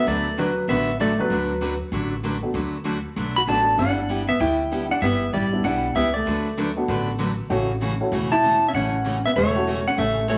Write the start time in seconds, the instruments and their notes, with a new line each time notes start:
Already playing: upright piano A3 B3 D4 F#4
0.07 upright bass D2, steel-string acoustic guitar D3 F#3 A3 D4 F#4 B4, electric slide guitar D5
0.37 steel-string acoustic guitar D3 F#3 A3 D4 F#4 B4, electric slide guitar B4
0.68 upright bass A1, steel-string acoustic guitar D3 F#3 A3 D4 F#4 B4, hollow-body jazz guitar B3, electric slide guitar E5
1.00 steel-string acoustic guitar D3 F#3 A3 D4 F#4 B4, electric slide guitar D5
1.18 hollow-body jazz guitar F#3, upright piano A3 B3 D4 F#4, electric slide guitar B4
1.30 upright bass D2, steel-string acoustic guitar D3 F#3 A3 D4 F#4 B4
1.61 steel-string acoustic guitar D3 F#3 A3 D4 F#4 B4
1.92 upright bass A1, steel-string acoustic guitar D3 F#3 A3 D4 F#4 B4
2.23 steel-string acoustic guitar D3 F#3 A3 D4 F#4 B4
2.43 upright piano A3 B3 D4 F#4
2.54 upright bass D2, steel-string acoustic guitar D3 F#3 A3 D4 F#4 B4
2.84 steel-string acoustic guitar D3 F#3 A3 D4 F#4 B4
3.16 upright bass B1, steel-string acoustic guitar D3 F#3 A3 D4 F#4 B4
3.36 hollow-body jazz guitar F#4, electric slide guitar B5
3.47 upright bass A1, steel-string acoustic guitar D3 F#3 A3 D4 F#4 B4, upright piano A3 B3 D4 F#4, electric slide guitar A5
3.78 upright bass G1, steel-string acoustic guitar G3 B3 E4 G4, hollow-body jazz guitar D4, electric slide guitar F#5
4.09 steel-string acoustic guitar G3 B3 E4 G4
4.29 hollow-body jazz guitar B3, electric slide guitar E5
4.40 upright bass D2, steel-string acoustic guitar G3 B3 E4 G4, electric slide guitar G5
4.71 upright piano G3 B3 D4 E4, steel-string acoustic guitar G3 B3 E4 G4
4.91 hollow-body jazz guitar D4, electric slide guitar F#5
5.01 upright bass G1, steel-string acoustic guitar G3 B3 E4 G4, electric slide guitar E5
5.33 upright bass A1, steel-string acoustic guitar G3 B3 E4 G4, electric slide guitar D5
5.52 upright piano G3 B3 D4 E4
5.63 upright bass B1, steel-string acoustic guitar G3 B3 E4 G4, hollow-body jazz guitar D4, electric slide guitar F#5
5.95 upright bass C#2, steel-string acoustic guitar G3 B3 E4 G4, electric slide guitar E5
6.14 hollow-body jazz guitar A3, electric slide guitar D5
6.26 upright bass D2, steel-string acoustic guitar D3 F#3 A3 D4 F#4 B4
6.57 steel-string acoustic guitar D3 F#3 A3 D4 F#4 B4
6.77 upright piano A3 B3 D4 F#4
6.88 upright bass A1, steel-string acoustic guitar D3 F#3 A3 D4 F#4 B4
7.18 steel-string acoustic guitar D3 F#3 A3 D4 F#4 B4
7.49 upright bass A1, steel-string acoustic guitar C#3 E3 A3 C#4 F#4, upright piano A3 C#4 E4 F#4
7.81 steel-string acoustic guitar C#3 E3 A3 C#4 F#4
8.00 upright piano A3 C#4 E4 F#4
8.12 upright bass E1, steel-string acoustic guitar C#3 E3 A3 C#4 F#4
8.32 hollow-body jazz guitar E4, electric slide guitar A5
8.43 steel-string acoustic guitar C#3 E3 A3 C#4 F#4
8.68 hollow-body jazz guitar C#4, electric slide guitar E5
8.73 upright bass A1, steel-string acoustic guitar C#3 E3 A3 C#4 F#4, electric slide guitar F#5
9.04 steel-string acoustic guitar C#3 E3 A3 C#4 F#4
9.26 hollow-body jazz guitar B3, electric slide guitar E5
9.36 upright bass E1, steel-string acoustic guitar C#3 E3 A3 C#4 F#4, electric slide guitar C#5
9.56 upright piano A3 C#4 E4 F#4
9.67 steel-string acoustic guitar C#3 E3 A3 C#4 F#4
9.88 hollow-body jazz guitar C#4, electric slide guitar F#5
9.97 upright bass A1, steel-string acoustic guitar C#3 E3 A3 C#4 F#4, electric slide guitar E5
10.28 steel-string acoustic guitar C#3 E3 A3 C#4 F#4, electric slide guitar C#5